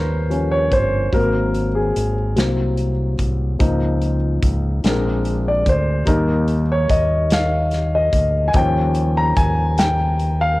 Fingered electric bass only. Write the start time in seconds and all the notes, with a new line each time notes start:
Already playing: D#2
0.72 G1
1.13 G#1
1.96 G#1
2.37 C2
3.19 C2
3.60 C#2
4.43 C#2
4.84 A#1
5.66 D2
6.07 D#2
6.90 D#2
8.13 D2
8.54 D#2
9.37 D#2